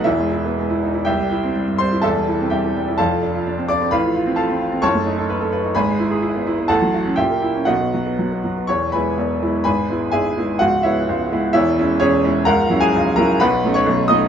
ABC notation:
X:1
M:2/4
L:1/16
Q:1/4=127
K:E
V:1 name="Grand piano"
[Ee]4 z4 | [K:C] [Geg]6 [cc']2 | [Aea]4 [Geg]4 | [Afa]6 [dd']2 |
[Bfb]4 [Afa]4 | [K:E] [cac']8 | [Bgb]8 | [Afa]4 [=Ge=g]4 |
[Fdf]6 z2 | [cc']2 [Bgb]6 | [Bgb]4 [Geg]4 | [Ff]2 [Ece]6 |
[Ece]4 [CGc]4 | [^Af^a]3 [Gg]3 [Aa]2 | [Bfb]3 [cc']3 [dd']2 |]
V:2 name="Grand piano"
[E,,,E,,] G, E B, G, E D E | [K:C] C,, G, E C G, G,, G, E | [E,,,E,,] G, E C G, E, G, E | [F,,,F,,] F, D F D C D C |
[A,,,A,,] F, F C F C F C | [K:E] [F,,,F,,] A, D A B A B D | [G,,,G,,] G, E G E B, E B, | [A,,,A,,] F, F C ^A,, ^A, E C |
[B,,,B,,] B, F, B, F, B, F, B, | [E,,,E,,]2 [G,B,E]2 [E,,,E,,]2 [G,B,E]2 | [G,,,G,,]2 [G,B,E]2 [G,,,G,,]2 [G,B,E]2 | [C,,,C,,]2 [G,B,]2 [C,,,C,,]2 [G,B,E]2 |
[E,,,E,,]2 [G,CE]2 [E,,,E,,]2 [G,CE]2 | [C,,,C,,]2 [F,CE]2 [C,,,C,,]2 [F,CE]2 | [B,,,B,,]2 [A,CD]2 [B,,,B,,]2 [A,CD]2 |]